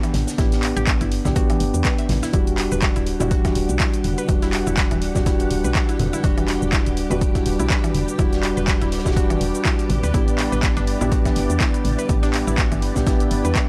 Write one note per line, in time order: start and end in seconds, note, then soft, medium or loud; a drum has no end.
0.00 0.09 E3 loud
0.00 0.36 B3 medium
0.00 0.36 D4 medium
0.00 0.36 G4 loud
0.00 closed hi-hat medium
0.00 shaker soft
0.14 0.25 A1 loud
0.14 snare loud
0.14 closed hi-hat medium
0.14 open hi-hat medium
0.14 high conga medium
0.27 snare loud
0.27 closed hi-hat medium
0.27 closed hi-hat soft
0.27 shaker medium
0.38 0.73 A1 loud
0.38 1.22 B3 medium
0.38 1.22 D4 medium
0.38 0.46 E4 medium
0.38 1.22 G4 medium
0.38 kick loud
0.38 snare loud
0.38 closed hi-hat medium
0.38 shaker medium
0.52 snare loud
0.52 closed hi-hat medium
0.52 shaker soft
0.63 clap medium
0.63 closed hi-hat medium
0.63 open hi-hat loud
0.77 0.96 A1 loud
0.77 0.85 G4 loud
0.77 closed hi-hat soft
0.77 shaker medium
0.86 kick loud
0.86 snare loud
0.86 clap loud
0.86 closed hi-hat loud
0.86 closed hi-hat medium
0.86 shaker medium
1.01 1.20 G1 loud
1.01 1.07 E4 medium
1.01 closed hi-hat medium
1.01 shaker soft
1.12 closed hi-hat medium
1.12 open hi-hat medium
1.25 1.57 A1 medium
1.25 2.31 B3 medium
1.25 2.31 D4 medium
1.25 1.31 E4 medium
1.25 2.31 G4 loud
1.25 kick medium
1.25 snare medium
1.25 closed hi-hat soft
1.25 high conga medium
1.25 low conga medium
1.25 shaker medium
1.36 1.43 F#4 loud
1.36 kick loud
1.36 closed hi-hat medium
1.36 shaker medium
1.50 1.55 E3 loud
1.50 closed hi-hat medium
1.50 shaker soft
1.60 1.72 G1 medium
1.60 closed hi-hat medium
1.60 open hi-hat loud
1.74 1.83 E2 medium
1.74 closed hi-hat soft
1.74 shaker medium
1.84 1.92 B4 loud
1.84 kick loud
1.84 snare loud
1.84 clap loud
1.84 closed hi-hat medium
1.84 shaker medium
1.98 2.04 E5 medium
1.98 closed hi-hat soft
1.98 closed hi-hat medium
1.98 shaker soft
2.09 2.20 A1 loud
2.09 snare loud
2.09 closed hi-hat medium
2.09 open hi-hat medium
2.09 high conga medium
2.09 low conga loud
2.23 2.29 E4 medium
2.23 snare loud
2.23 closed hi-hat soft
2.23 closed hi-hat medium
2.23 shaker medium
2.33 2.68 E1 loud
2.33 3.17 G3 medium
2.33 13.69 G3 medium
2.33 3.17 D4 medium
2.33 2.41 E4 medium
2.33 3.18 F#4 medium
2.33 13.69 G4 medium
2.33 13.69 B4 medium
2.33 13.69 D5 medium
2.33 9.86 F#5 medium
2.33 kick loud
2.33 closed hi-hat medium
2.33 shaker medium
2.47 closed hi-hat medium
2.47 shaker soft
2.58 snare soft
2.58 clap medium
2.58 closed hi-hat medium
2.58 open hi-hat loud
2.72 2.91 E1 loud
2.72 2.77 B4 medium
2.72 shaker medium
2.81 kick loud
2.81 snare loud
2.81 clap loud
2.81 closed hi-hat medium
2.81 shaker medium
2.96 3.16 D1 loud
2.96 3.02 E4 medium
2.96 closed hi-hat medium
2.96 shaker soft
3.06 closed hi-hat medium
3.06 open hi-hat medium
3.20 3.52 E1 medium
3.20 4.26 G3 medium
3.20 4.26 D4 medium
3.20 3.26 E4 medium
3.20 4.26 F#4 loud
3.20 closed hi-hat soft
3.20 low conga medium
3.20 shaker medium
3.31 3.38 F#4 loud
3.31 kick loud
3.31 closed hi-hat medium
3.31 shaker medium
3.45 3.51 E3 loud
3.45 kick medium
3.45 snare soft
3.45 closed hi-hat medium
3.45 shaker soft
3.55 3.67 D1 medium
3.55 snare soft
3.55 closed hi-hat medium
3.55 open hi-hat loud
3.69 3.78 B1 medium
3.69 closed hi-hat soft
3.69 shaker medium
3.79 3.87 E4 medium
3.79 kick loud
3.79 snare loud
3.79 clap loud
3.79 closed hi-hat medium
3.79 shaker medium
3.94 closed hi-hat medium
3.94 shaker soft
4.04 4.16 E1 loud
4.04 closed hi-hat medium
4.04 open hi-hat medium
4.04 high conga medium
4.18 4.24 B4 medium
4.18 closed hi-hat soft
4.18 shaker medium
4.28 4.63 E1 loud
4.28 5.12 G3 medium
4.28 5.12 D4 medium
4.28 5.13 F#4 medium
4.28 kick loud
4.28 closed hi-hat medium
4.28 shaker medium
4.42 4.48 E4 medium
4.42 snare medium
4.42 closed hi-hat medium
4.42 shaker soft
4.53 clap medium
4.53 closed hi-hat medium
4.53 open hi-hat loud
4.67 4.86 E1 loud
4.67 4.72 E4 medium
4.67 shaker medium
4.77 4.85 F#4 loud
4.77 kick loud
4.77 snare loud
4.77 clap loud
4.77 closed hi-hat medium
4.77 shaker medium
4.91 5.11 D1 loud
4.91 4.97 E3 loud
4.91 closed hi-hat medium
4.91 shaker soft
5.02 closed hi-hat medium
5.02 open hi-hat medium
5.15 5.48 E1 medium
5.15 6.21 G3 medium
5.15 6.21 D4 medium
5.15 6.22 F#4 loud
5.15 kick medium
5.15 snare medium
5.15 closed hi-hat soft
5.15 low conga medium
5.15 shaker medium
5.26 5.34 E4 medium
5.26 kick loud
5.26 snare loud
5.26 closed hi-hat medium
5.26 shaker medium
5.40 closed hi-hat medium
5.40 shaker soft
5.51 5.62 D1 medium
5.51 closed hi-hat medium
5.51 open hi-hat loud
5.64 5.73 B1 medium
5.64 5.70 B4 medium
5.64 closed hi-hat soft
5.64 shaker medium
5.75 kick loud
5.75 snare loud
5.75 clap loud
5.75 closed hi-hat medium
5.75 shaker medium
5.89 5.94 E4 medium
5.89 closed hi-hat medium
5.89 closed hi-hat soft
5.89 shaker soft
5.99 6.11 E1 loud
5.99 closed hi-hat medium
5.99 open hi-hat loud
5.99 high conga medium
5.99 low conga loud
6.13 6.19 E4 medium
6.13 closed hi-hat soft
6.13 shaker medium
6.23 6.58 E1 loud
6.23 7.07 G3 medium
6.23 7.07 D4 medium
6.23 6.31 F#4 loud
6.23 7.08 F#4 medium
6.23 kick loud
6.23 closed hi-hat medium
6.23 closed hi-hat loud
6.23 shaker medium
6.37 6.43 E3 loud
6.37 closed hi-hat medium
6.37 shaker soft
6.48 snare medium
6.48 clap medium
6.48 closed hi-hat medium
6.48 open hi-hat loud
6.62 6.81 E1 loud
6.62 shaker medium
6.72 6.80 E4 medium
6.72 kick loud
6.72 snare loud
6.72 clap loud
6.72 closed hi-hat medium
6.72 shaker medium
6.86 7.06 D1 loud
6.86 closed hi-hat medium
6.86 shaker soft
6.97 closed hi-hat medium
6.97 open hi-hat loud
7.10 7.43 E1 medium
7.10 8.16 G3 medium
7.10 8.16 D4 medium
7.10 8.17 F#4 loud
7.10 7.16 B4 medium
7.10 closed hi-hat soft
7.10 low conga medium
7.10 shaker medium
7.21 kick loud
7.21 closed hi-hat medium
7.21 shaker medium
7.34 7.41 E4 medium
7.34 kick medium
7.34 snare soft
7.34 closed hi-hat medium
7.34 shaker soft
7.46 7.57 D1 medium
7.46 snare soft
7.46 closed hi-hat medium
7.46 open hi-hat loud
7.59 7.68 B1 medium
7.59 7.65 E4 medium
7.59 closed hi-hat soft
7.59 shaker medium
7.70 7.77 F#4 loud
7.70 kick loud
7.70 snare loud
7.70 clap loud
7.70 closed hi-hat medium
7.70 shaker medium
7.84 7.90 E3 loud
7.84 closed hi-hat medium
7.84 shaker soft
7.94 8.06 E1 loud
7.94 closed hi-hat medium
7.94 open hi-hat loud
7.94 high conga medium
8.08 closed hi-hat soft
8.08 shaker medium
8.18 8.53 E1 loud
8.18 9.02 G3 medium
8.18 9.03 D4 medium
8.18 8.26 E4 medium
8.18 9.03 F#4 medium
8.18 kick loud
8.18 closed hi-hat medium
8.18 shaker medium
8.33 snare medium
8.33 closed hi-hat soft
8.33 shaker soft
8.43 clap medium
8.43 closed hi-hat medium
8.43 open hi-hat loud
8.57 8.77 E1 loud
8.57 8.63 B4 medium
8.57 shaker medium
8.67 kick loud
8.67 snare loud
8.67 clap loud
8.67 closed hi-hat medium
8.67 shaker medium
8.81 9.01 D1 loud
8.81 8.87 E4 medium
8.81 closed hi-hat medium
8.81 shaker soft
8.92 snare medium
8.92 closed hi-hat medium
8.92 open hi-hat loud
8.99 snare medium
8.99 closed hi-hat medium
9.05 9.38 E1 medium
9.05 9.88 G3 medium
9.05 9.88 D4 medium
9.05 9.12 E4 medium
9.05 9.89 F#4 loud
9.05 kick medium
9.05 snare medium
9.05 closed hi-hat soft
9.05 closed hi-hat medium
9.05 low conga medium
9.05 shaker medium
9.11 snare medium
9.11 closed hi-hat medium
9.16 9.24 F#4 loud
9.16 kick loud
9.16 closed hi-hat medium
9.16 shaker medium
9.30 9.36 E3 loud
9.30 closed hi-hat medium
9.30 shaker soft
9.41 9.52 E1 medium
9.41 closed hi-hat medium
9.41 open hi-hat loud
9.55 closed hi-hat soft
9.55 shaker medium
9.65 9.73 E4 medium
9.65 kick loud
9.65 snare loud
9.65 clap loud
9.65 closed hi-hat medium
9.65 shaker medium
9.79 closed hi-hat medium
9.79 closed hi-hat soft
9.79 shaker soft
9.89 10.01 A1 loud
9.89 13.69 E4 medium
9.89 closed hi-hat medium
9.89 open hi-hat medium
9.89 high conga medium
9.89 low conga medium
10.03 10.12 D2 medium
10.03 10.09 B4 medium
10.03 closed hi-hat soft
10.03 shaker medium
10.13 10.48 A1 loud
10.13 10.97 B3 medium
10.13 10.98 D4 medium
10.13 10.21 E4 medium
10.13 10.98 G4 medium
10.13 kick loud
10.13 closed hi-hat medium
10.13 shaker medium
10.28 closed hi-hat soft
10.28 shaker soft
10.38 snare medium
10.38 clap medium
10.38 closed hi-hat medium
10.38 open hi-hat loud
10.52 10.72 A1 loud
10.52 10.58 B4 medium
10.52 shaker medium
10.62 kick loud
10.62 snare loud
10.62 clap loud
10.62 closed hi-hat loud
10.62 closed hi-hat medium
10.62 shaker medium
10.77 10.96 G1 loud
10.77 10.80 D4 loud
10.77 closed hi-hat medium
10.77 shaker soft
10.87 closed hi-hat medium
10.87 open hi-hat medium
11.00 11.33 A1 medium
11.00 12.06 B3 medium
11.00 12.07 D4 medium
11.00 11.07 E4 medium
11.00 12.07 G4 loud
11.00 closed hi-hat soft
11.00 low conga medium
11.00 shaker medium
11.12 11.19 F#4 loud
11.12 kick loud
11.12 closed hi-hat medium
11.12 shaker medium
11.25 11.31 E3 loud
11.25 kick medium
11.25 snare soft
11.25 closed hi-hat medium
11.25 shaker soft
11.35 11.47 G1 medium
11.35 snare soft
11.35 closed hi-hat medium
11.35 open hi-hat loud
11.50 11.58 E2 medium
11.50 closed hi-hat soft
11.50 shaker medium
11.60 11.68 E4 medium
11.60 kick loud
11.60 snare loud
11.60 clap loud
11.60 closed hi-hat medium
11.60 shaker medium
11.74 closed hi-hat medium
11.74 shaker soft
11.84 11.96 A1 loud
11.84 closed hi-hat medium
11.84 open hi-hat medium
11.84 high conga medium
11.99 12.04 B4 medium
11.99 closed hi-hat soft
11.99 shaker medium
12.08 12.43 A1 loud
12.08 12.92 B3 medium
12.08 12.93 D4 medium
12.08 12.93 G4 medium
12.08 kick loud
12.08 closed hi-hat medium
12.08 shaker medium
12.23 12.26 D4 loud
12.23 snare medium
12.23 closed hi-hat medium
12.23 shaker soft
12.34 clap medium
12.34 closed hi-hat medium
12.34 open hi-hat loud
12.47 12.67 A1 loud
12.47 12.53 E4 medium
12.47 shaker medium
12.58 12.65 F#4 loud
12.58 kick loud
12.58 snare loud
12.58 clap loud
12.58 closed hi-hat medium
12.58 shaker medium
12.72 12.91 G1 loud
12.72 12.77 E3 loud
12.72 closed hi-hat medium
12.72 shaker soft
12.82 closed hi-hat medium
12.82 open hi-hat medium
12.95 13.28 A1 medium
12.95 13.69 B3 medium
12.95 13.69 D4 medium
12.95 13.69 G4 loud
12.95 kick medium
12.95 snare medium
12.95 closed hi-hat soft
12.95 low conga medium
12.95 shaker medium
13.07 13.14 E4 medium
13.07 kick loud
13.07 snare loud
13.07 closed hi-hat medium
13.07 shaker medium
13.20 closed hi-hat medium
13.20 shaker soft
13.31 13.42 G1 medium
13.31 closed hi-hat medium
13.31 open hi-hat loud
13.45 13.54 E2 medium
13.45 13.51 B4 medium
13.45 closed hi-hat soft
13.45 shaker medium
13.55 kick loud
13.55 snare loud
13.55 clap loud
13.55 closed hi-hat medium
13.55 shaker medium